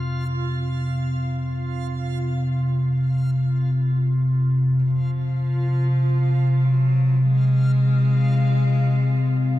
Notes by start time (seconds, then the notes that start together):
Already playing: F2 C3 F4 F5
4.84 C3 F3 F4 F5
6.64 F#3
7.23 G#3